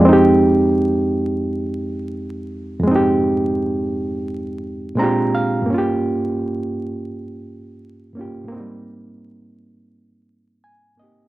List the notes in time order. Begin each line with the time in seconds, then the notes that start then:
Already playing: F2
0.01 G#3
0.05 C4 D#4
0.13 G4
2.80 F2 G#3
2.88 C4 D#4
2.96 G4
4.95 A#2 G#3 C4
4.99 D4 F4 G4 A#5
5.35 F5
5.62 G2
5.66 A#3
5.70 C#4 F4
5.78 G4
8.13 G2 A#3 C#4
8.19 F4 G4
8.44 G#2 A#3
8.52 C4
8.56 G3 D#4
10.64 G#5
10.95 G#2 A#3 C4 D#5
11.01 D#4 G4